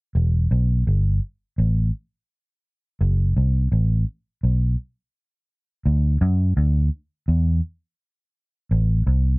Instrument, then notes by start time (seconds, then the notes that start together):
fingered electric bass
0.15 E1
0.51 B1
0.87 G1
1.58 A1
3.01 F#1
3.37 C2
3.72 A1
4.43 B1
5.86 D2
6.21 F#2
6.57 D2
7.28 E2
8.71 A1
9.07 C2